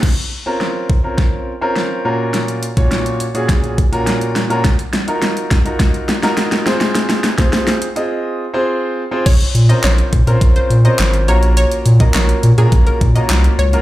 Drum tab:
CC |x---------------|----------------|----------------|----------------|
HH |----------------|xxxxxxxxxxxxxxxx|xxxxxxxxxxxxxxxx|xxxxxxxx--------|
CP |----------------|----------------|----------------|----------------|
SD |o---o---o---o---|o---o---o---o-o-|o-o-o-o-o-oooooo|oooooo----------|
BD |o-----o-o-------|---o----o-o-----|o-----o-o-------|---o------------|

CC |x---------------|----------------|
HH |xxxxxxxxxxxxxxxx|xxxxxxxxxxxxxxxx|
CP |----x-------x---|----x-------x---|
SD |----o-------o---|----o-------o---|
BD |o-----o-o-------|---o----o-o-----|